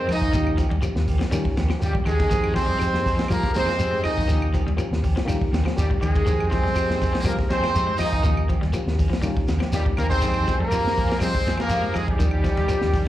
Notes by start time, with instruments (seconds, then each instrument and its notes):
Already playing: reed electric piano G#3 C4 D#4 A#4
0.07 fingered electric bass F2, clean electric guitar D#3 F3 G#3 C4 G#4, trombone A#3, muted trumpet D#4, ride bell, claves, shekere
0.13 horn section D#4 D#5
0.22 kick
0.33 fingered electric bass D#2, clean electric guitar D#3 F3 A#3 C#4 G4, reed electric piano A#3 C#4 F4 G4, kick, snare, ride bell, shekere
0.47 claves
0.57 clean electric guitar F3 A#3 C#4 G4, kick, snare, ride bell, shekere
0.70 fingered electric bass D#2, clean electric guitar G3, ride bell
0.82 clean electric guitar F3, reed electric piano A#3 C#4 F4 G4, ride bell, claves, shekere
0.95 fingered electric bass D#2, snare
1.08 clean electric guitar F3 A#3 C#4 G4, kick, open hi-hat, shekere
1.19 clean electric guitar F3, snare, ride bell
1.31 fingered electric bass D#3, clean electric guitar G3, reed electric piano A#3 C#4 F4 G4, ride bell, claves, shekere
1.45 kick
1.57 fingered electric bass D#2, clean electric guitar F3 A#3 C#4 G4, snare, ride bell, shekere
1.70 clean electric guitar F3, snare, claves
1.80 fingered electric bass D#2, muted trumpet G3, reed electric piano A#3 C#4 F4 G4, ride bell, shekere
1.85 trombone D#3, horn section G3 G4
1.93 clean electric guitar G3, kick
2.05 fingered electric bass D#2, clean electric guitar D#3 F3 A#3 C#4 G4, trombone D#3, muted trumpet G#3, horn section G#3 G#4, ride bell, claves, shekere
2.20 kick, snare, ride bell
2.30 fingered electric bass F2, clean electric guitar D#3 G#3 C4 G#4, reed electric piano G#3 C4 D#4 G4, kick, ride bell, shekere
2.44 claves
2.54 clean electric guitar D#3 F3 G#3 C4 G#4, trombone G#3, horn section C4 C5, muted trumpet C4, kick, snare, ride bell, shekere
2.66 fingered electric bass F2, clean electric guitar G3
2.79 clean electric guitar F3, reed electric piano G#3 C4 D#4 G4, muted fingered electric bass stroke, ride bell, claves, shekere
2.93 fingered electric bass F2, snare
3.05 clean electric guitar D#3 G#3 C4 G#4, kick, open hi-hat, shekere
3.16 clean electric guitar F3, snare, ride bell
3.28 trombone F3, fingered electric bass F3, clean electric guitar G3, reed electric piano G#3 C4 D#4 G4, muted trumpet A#3, horn section A#3 A#4, ride bell, claves, shekere
3.43 kick, snare
3.54 fingered electric bass F2, clean electric guitar D#3 G#3 C4 G#4, trombone G#3, muted trumpet C4, horn section C4 C5, snare, ride bell, shekere
3.66 clean electric guitar F3, snare, ride bell, claves
3.77 fingered electric bass F2, reed electric piano G#3 C4 D#4 G4, ride bell, shekere
3.91 clean electric guitar G#3
4.03 fingered electric bass F2, clean electric guitar D#3 F3 G#3 C4 G#4, horn section D#4 D#5, muted trumpet D#4, ride bell, claves, shekere
4.07 trombone A#3
4.15 clean electric guitar G#3 C4, kick, snare
4.27 fingered electric bass D#2, clean electric guitar D#3 F3 A#3 C#4 G4, reed electric piano A#3 C#4 F4 G4, kick, snare, ride bell, shekere
4.42 claves
4.52 clean electric guitar F3 A#3 C#4 G4, kick, ride bell, shekere
4.66 fingered electric bass D#2, clean electric guitar G3, ride bell
4.77 clean electric guitar F3, reed electric piano A#3 C#4 F4 G4, ride bell, claves, shekere
4.91 fingered electric bass D#2, snare
5.02 clean electric guitar F3 C#4 G4, kick, open hi-hat, shekere
5.16 clean electric guitar F3, snare, ride bell
5.25 fingered electric bass D#3, clean electric guitar G3, reed electric piano A#3 C#4 F4 G4, claves, shekere
5.30 ride bell
5.41 kick
5.51 fingered electric bass D#2, clean electric guitar F3 A#3 C#4 G4, snare, ride bell, shekere
5.65 clean electric guitar F3 A#3 C#4 G4, snare, claves
5.76 fingered electric bass D#2, trombone D#3, horn section G3 G4, muted trumpet G3, reed electric piano A#3 C#4 F4 G4, snare, ride bell, shekere
5.90 clean electric guitar G3, kick
6.01 fingered electric bass D#2, clean electric guitar D#3 F3 A#3 C#4 G4, trombone D#3, horn section G#3 G#4, muted trumpet G#3, ride bell, claves, shekere
6.15 clean electric guitar A#3 C#4 G4, kick, ride bell
6.25 fingered electric bass F2, clean electric guitar D#3 G#3 C4 G#4, reed electric piano G#3 C4 D#4 G4, kick, ride bell, shekere
6.40 claves
6.48 clean electric guitar D#3 F3 G#3 C4, trombone G#3, muted trumpet C4, horn section C4 C5, shekere
6.52 clean electric guitar G#4, kick, snare, ride bell
6.64 fingered electric bass F2, clean electric guitar G3, snare
6.75 clean electric guitar F3, reed electric piano G#3 C4 D#4 G4, ride bell, claves, shekere
6.90 fingered electric bass F2, snare
7.01 clean electric guitar D#3 G#3 C4 G#4, kick, open hi-hat, shekere
7.13 clean electric guitar F3, snare, ride bell
7.20 reed electric piano G#3, muted trumpet A#3
7.24 trombone F3, fingered electric bass F3, clean electric guitar G3, horn section A#3 A#4, reed electric piano C4 D#4 G4, ride bell, claves, shekere
7.39 kick, snare
7.49 fingered electric bass F2, clean electric guitar D#3 G#3 C4 G#4, trombone G#3, muted trumpet C4, horn section C4 C5, snare, ride bell, shekere
7.63 clean electric guitar F3 G#3 C4, snare, ride bell, claves
7.74 fingered electric bass F2, reed electric piano G#3 C4 D#4 G4, ride bell, shekere
7.87 clean electric guitar G#3
7.97 fingered electric bass F2, clean electric guitar D#3 F3 G#3 C4, trombone A#3, muted trumpet D#4, horn section D#4 D#5, ride bell, claves, shekere
8.01 clean electric guitar G#4
8.13 clean electric guitar G#3 C4 G#4, kick
8.23 fingered electric bass D#2, clean electric guitar D#3 F3 A#3 C#4, reed electric piano A#3 C#4 F4 G4, muted clean electric guitar stroke, kick, ride bell, shekere
8.37 claves
8.49 clean electric guitar F3 A#3 C#4 G4, kick, ride bell, shekere
8.61 fingered electric bass D#2, clean electric guitar G3, snare, ride bell
8.73 clean electric guitar F3, reed electric piano A#3 C#4 F4 G4, ride bell, claves, shekere
8.86 fingered electric bass D#2, snare
8.98 clean electric guitar F3 A#3 C#4, muted clean electric guitar stroke, kick, open hi-hat, shekere
9.10 clean electric guitar F3, snare, ride bell
9.22 fingered electric bass D#3, clean electric guitar G3, reed electric piano A#3 C#4 F4 G4, ride bell, claves, shekere
9.37 kick
9.47 fingered electric bass D#2, clean electric guitar F3 A#3 C#4, muted clean electric guitar stroke, snare, ride bell, shekere
9.60 clean electric guitar F3 A#3 C#4 G4, snare, claves
9.72 fingered electric bass D#2, trombone D#3, muted trumpet G3, horn section G3 G4, reed electric piano A#3 C#4 F4 G4, snare, ride bell, shekere
9.85 clean electric guitar G3, kick
9.97 fingered electric bass D#2, clean electric guitar D#3 F3 A#3 C#4 G4, trombone F3, horn section A#3 A#4, muted trumpet A#3, ride bell, claves, shekere
10.09 trombone G#3, clean electric guitar A#3 C#4 G4, muted trumpet C4, horn section C4 C5, kick, ride bell
10.21 fingered electric bass F2, clean electric guitar D#3 G#3 C4 G#4, reed electric piano G#3 C4 D#4 G4, kick, ride bell, shekere
10.34 claves
10.47 clean electric guitar D#3 F3 G#3 C4 G#4, kick, snare, ride bell, shekere
10.60 fingered electric bass F2, trombone F3, clean electric guitar G3, horn section A#3 A#4, muted trumpet A#3
10.71 clean electric guitar F3, reed electric piano G#3 C4 D#4 G4, ride bell, claves, shekere
10.85 fingered electric bass F2, snare
10.95 clean electric guitar D#3 G#3 G#4, muted clean electric guitar stroke, kick, open hi-hat, shekere
11.09 clean electric guitar F3, snare, ride bell
11.19 fingered electric bass F3, clean electric guitar G3, trombone G#3, reed electric piano G#3 C4 D#4 G#4, horn section C4 C5, muted trumpet C4, claves, shekere
11.23 ride bell
11.35 kick
11.45 fingered electric bass F2, clean electric guitar D#3 G#3 C4 G#4, snare, ride bell, shekere
11.57 clean electric guitar F3 G#3 C4 G#4, trombone F3, snare, ride bell, claves
11.61 horn section A#3 A#4, muted trumpet A#3
11.69 fingered electric bass F2, reed electric piano G#3 C4 D#4 G4, snare, ride bell, shekere
11.82 clean electric guitar G#3
11.94 fingered electric bass F2, clean electric guitar D#3 F3 G#3 G#4, trombone D#3, horn section G#3 G#4, muted trumpet G#3, ride bell, claves, shekere
12.06 horn section G3 G4, muted trumpet G3, clean electric guitar G#3 C4 G#4, kick
12.11 trombone D#3
12.17 fingered electric bass D#2, clean electric guitar D#3 F3 A#3 C#4 G4, reed electric piano A#3 C#4 F4 G4, kick, ride bell, shekere
12.31 claves
12.42 clean electric guitar F3 A#3 C#4 G4, kick, snare, ride bell, shekere
12.57 fingered electric bass D#2, clean electric guitar G3, snare, ride bell
12.67 clean electric guitar F3, reed electric piano A#3 C#4 F4 G4, ride bell, claves, shekere
12.81 fingered electric bass D#2, snare
12.92 clean electric guitar F3 C#4 G4, kick, open hi-hat, shekere